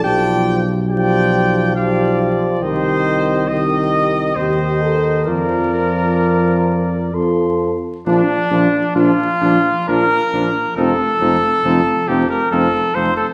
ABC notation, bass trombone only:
X:1
M:3/4
L:1/8
Q:1/4=68
K:Bb
V:1 name="Bass trombone" clef=bass
=B,,,4- B,,, z | C,,4 E,,2 | F,,4 F,, z | B,,, B,,, B,,, B,,, B,,, B,,, |
F,,, F,,, F,,, F,,, F,,, F,,, |]